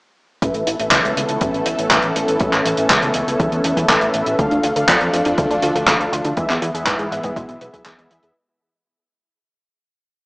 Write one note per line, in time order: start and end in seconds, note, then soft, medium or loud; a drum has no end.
0.42 0.51 A1 loud
0.42 4.35 E3 medium
0.42 4.35 A3 medium
0.42 4.35 B3 medium
0.42 4.35 C#4 medium
0.42 0.76 C#4 medium
0.42 4.35 A4 medium
0.42 0.76 A4 medium
0.42 0.76 B4 medium
0.42 0.76 E5 medium
0.42 kick loud
0.42 closed hi-hat medium
0.54 0.63 A1 medium
0.54 closed hi-hat soft
0.67 0.76 A1 medium
0.67 closed hi-hat medium
0.79 0.88 A1 medium
0.79 2.38 C#4 medium
0.79 2.38 A4 medium
0.79 2.38 B4 medium
0.79 2.38 E5 medium
0.79 closed hi-hat medium
0.91 1.01 C#2 loud
0.91 kick loud
0.91 clap loud
0.91 closed hi-hat medium
1.04 1.13 C#2 medium
1.04 closed hi-hat soft
1.17 1.25 C#2 medium
1.17 closed hi-hat loud
1.29 1.38 C#2 medium
1.29 closed hi-hat medium
1.41 1.50 A1 loud
1.41 kick loud
1.41 closed hi-hat medium
1.54 1.63 A1 medium
1.54 closed hi-hat soft
1.66 1.75 A1 medium
1.66 closed hi-hat loud
1.79 1.87 A1 medium
1.79 closed hi-hat medium
1.91 2.00 A1 loud
1.91 kick loud
1.91 clap loud
1.91 closed hi-hat medium
2.02 2.12 A1 medium
2.02 closed hi-hat soft
2.16 2.25 A1 medium
2.16 closed hi-hat loud
2.28 2.37 A1 medium
2.28 closed hi-hat medium
2.40 2.49 A1 loud
2.40 2.75 C#4 medium
2.40 2.75 A4 medium
2.40 2.75 B4 medium
2.40 2.75 E5 loud
2.40 kick loud
2.40 closed hi-hat medium
2.53 2.62 A1 medium
2.53 clap soft
2.53 closed hi-hat soft
2.65 2.74 A1 medium
2.65 closed hi-hat loud
2.77 2.87 A1 medium
2.77 3.86 C#4 medium
2.77 3.86 A4 medium
2.77 3.86 B4 medium
2.77 3.86 E5 medium
2.77 closed hi-hat medium
2.90 2.99 C#2 loud
2.90 kick loud
2.90 clap loud
2.90 closed hi-hat medium
3.02 3.11 C#2 medium
3.02 closed hi-hat soft
3.14 3.24 C#2 loud
3.14 closed hi-hat loud
3.27 3.36 C#2 medium
3.27 closed hi-hat medium
3.40 3.48 E2 loud
3.40 kick loud
3.40 closed hi-hat medium
3.52 3.61 E2 medium
3.52 closed hi-hat soft
3.64 3.73 E2 medium
3.64 closed hi-hat loud
3.77 3.86 E2 medium
3.77 kick medium
3.77 closed hi-hat medium
3.89 3.98 A1 loud
3.89 4.36 C#4 medium
3.89 4.36 A4 medium
3.89 4.36 B4 medium
3.89 4.36 E5 medium
3.89 kick loud
3.89 clap loud
3.89 closed hi-hat medium
4.01 4.10 A1 medium
4.01 closed hi-hat soft
4.14 4.23 A1 medium
4.14 closed hi-hat medium
4.26 4.35 A1 medium
4.26 closed hi-hat medium
4.39 4.48 D2 loud
4.39 6.35 F3 medium
4.39 4.50 A3 loud
4.39 6.35 A3 medium
4.39 6.35 D4 medium
4.39 4.73 D4 medium
4.39 4.73 F4 medium
4.39 4.73 A4 medium
4.39 4.73 F5 medium
4.39 kick loud
4.39 closed hi-hat medium
4.51 4.60 D2 medium
4.51 4.63 D4 loud
4.51 closed hi-hat soft
4.63 4.72 D2 medium
4.63 4.68 F4 loud
4.63 closed hi-hat medium
4.76 4.85 D2 medium
4.76 6.34 D4 medium
4.76 6.34 F4 medium
4.76 6.34 A4 medium
4.76 4.87 A4 loud
4.76 6.34 F5 medium
4.76 closed hi-hat medium
4.88 4.97 F2 loud
4.88 5.00 D5 medium
4.88 kick loud
4.88 clap loud
4.88 closed hi-hat medium
5.01 5.10 F2 medium
5.01 5.08 A4 medium
5.01 closed hi-hat medium
5.13 5.22 F2 medium
5.13 5.21 F4 loud
5.13 closed hi-hat loud
5.25 5.34 F2 medium
5.25 5.33 D4 loud
5.25 closed hi-hat medium
5.38 5.47 D2 loud
5.38 5.49 A3 loud
5.38 kick loud
5.38 closed hi-hat medium
5.50 5.59 D2 medium
5.50 5.62 D4 loud
5.50 closed hi-hat soft
5.62 5.72 D2 medium
5.62 5.67 F4 loud
5.62 closed hi-hat loud
5.75 5.84 D2 medium
5.75 5.80 A4 medium
5.75 closed hi-hat medium
5.88 5.96 D2 loud
5.88 5.99 D5 medium
5.88 kick loud
5.88 clap loud
5.88 closed hi-hat medium
6.00 6.09 D2 medium
6.00 6.08 A4 medium
6.00 closed hi-hat soft
6.12 6.21 D2 medium
6.12 6.17 F4 loud
6.12 closed hi-hat loud
6.25 6.34 D2 medium
6.25 6.32 D4 loud
6.25 closed hi-hat medium
6.37 6.46 E2 loud
6.37 8.34 E3 medium
6.37 6.49 G#3 loud
6.37 8.34 G#3 medium
6.37 8.34 B3 medium
6.37 6.71 B3 medium
6.37 6.71 E4 medium
6.37 6.71 G#4 medium
6.37 6.71 E5 medium
6.37 kick loud
6.37 closed hi-hat medium
6.50 6.58 E2 medium
6.50 6.61 B3 loud
6.50 clap soft
6.50 closed hi-hat soft
6.62 6.71 E2 medium
6.62 6.67 E4 loud
6.62 closed hi-hat loud
6.74 6.83 E2 medium
6.74 7.83 B3 medium
6.74 7.83 E4 medium
6.74 7.83 G#4 medium
6.74 6.86 G#4 loud
6.74 7.83 E5 medium
6.74 closed hi-hat medium
6.87 6.96 G#2 loud
6.87 6.98 B4 medium
6.87 kick loud
6.87 clap loud
6.87 closed hi-hat medium
6.99 7.08 G#2 medium
6.99 7.07 G#4 medium
6.99 closed hi-hat soft
7.12 7.20 G#2 medium
7.12 7.19 E4 loud
7.12 closed hi-hat medium
7.23 7.33 G#2 medium
7.23 7.31 B3 loud
7.23 kick medium
7.23 closed hi-hat medium
7.36 7.45 B1 loud
7.36 7.48 G#3 loud
7.36 kick loud
7.36 closed hi-hat medium
7.49 7.58 B1 medium
7.49 7.60 B3 loud
7.49 closed hi-hat soft
7.61 7.70 B1 medium
7.61 7.72 B4 loud
7.61 closed hi-hat medium
7.74 7.82 B1 medium
7.74 7.81 G#4 medium
7.74 kick medium
7.74 closed hi-hat medium
7.86 7.95 E2 loud
7.86 8.33 B3 medium
7.86 8.33 E4 medium
7.86 7.94 G#4 medium
7.86 8.33 G#4 medium
7.86 8.33 E5 medium
7.86 kick loud
7.86 clap loud
7.86 closed hi-hat medium
7.98 8.07 E2 medium
7.98 8.10 G#3 loud
7.98 closed hi-hat soft
8.11 8.20 E2 medium
8.11 8.18 E4 loud
8.11 closed hi-hat loud
8.23 8.32 E2 medium
8.23 8.28 G#4 medium
8.23 closed hi-hat medium